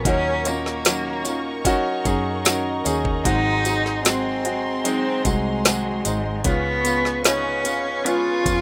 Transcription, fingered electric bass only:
0.05 D#2
2.06 F#2
2.86 D#2
3.26 G#1
5.26 C2
6.06 G#1
6.45 C#2
8.46 F2

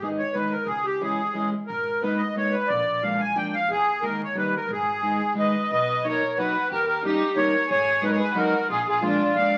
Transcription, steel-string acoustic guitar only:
0.02 D#3 G#3 B3 D#4
0.34 D#3 G#3 B3 D#4
1.00 E3 G#3 C#4 E4
1.34 E3 G#3 C#4 E4
2.03 G#3 A#3 B3 D#4
2.35 G#3 A#3 B3 D#4
3.03 F3 G#3 A#3 D4
3.35 F3 G#3 A#3 D4
4.02 D#3 G#3 A#3 D#4
4.36 D#3 G3 A#3 D#4
5.02 D#3 G#3 B3 D#4
5.34 D#3 G#3 B3 D#4
6.04 F#3 A#3 B3 D#4
6.38 F#3 A#3 B3 D#4
7.03 G3 A#3 C#4 D#4
7.36 G3 A#3 C#4 D#4
8.02 F#3 G#3 B3 D#4
8.34 F#3 G#3 B3 D#4
9.02 F3 G#3 A#3 D4
9.34 F3 G#3 A#3 D4

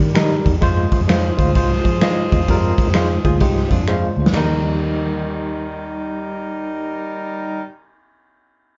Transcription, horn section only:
Already playing: G4 A#4 D5
0.62 F4 G#4 C5
4.35 G3 D#4 A#4

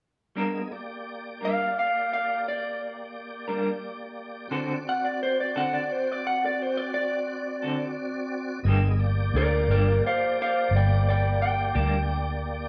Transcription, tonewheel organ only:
0.37 B3 G#4 D#5
0.71 A#3 G4 D5
4.49 C4 F#4 D5
8.64 B3 G#4 D#5
8.99 A#3 G4 D5

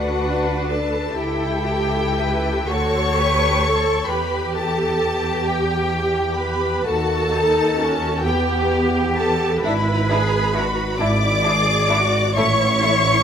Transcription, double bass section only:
Already playing: D2
1.17 C#2
2.69 D2
4.09 E2
6.86 D#2
8.24 E2
9.63 G#1
10.98 G#1
12.36 A1

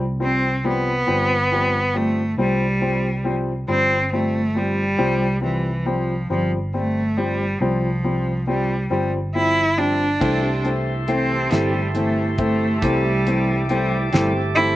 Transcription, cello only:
0.23 C4
0.68 B3
1.97 A3
2.40 G3
3.70 C4
4.14 A3
4.58 G3
5.43 E3
5.87 F3
6.32 F3
6.75 A3
7.18 G3
7.60 F3
8.49 G3
8.92 G3
9.36 E4
9.78 D4
11.09 C4
11.53 G3
11.95 A3
12.39 A3
12.82 G3
13.68 G3
14.12 G3
14.55 E4

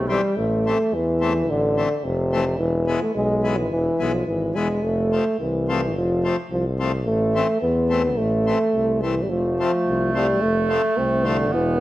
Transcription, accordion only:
0.09 E3 G3 C4
0.66 E3 A3 C4
1.21 E3 A3 C4
1.77 E3 A3 C4
2.32 E3 A3 C4
2.87 E3 G#3 B3
3.44 E3 G#3 B3
3.99 E3 G#3 B3
4.55 E3 G#3 B3
5.12 F3 A3 C4
5.69 F3 A3 C4
6.24 F3 A3 C4
6.79 F3 A3 C4
7.35 E3 A3 C4
7.90 E3 A3 C4
8.46 E3 A3 C4
9.03 E3 A3 C4
9.60 F3 A3 C4
10.15 F3 A3 C4
10.69 F3 A3 C4
11.24 F3 A3 C4

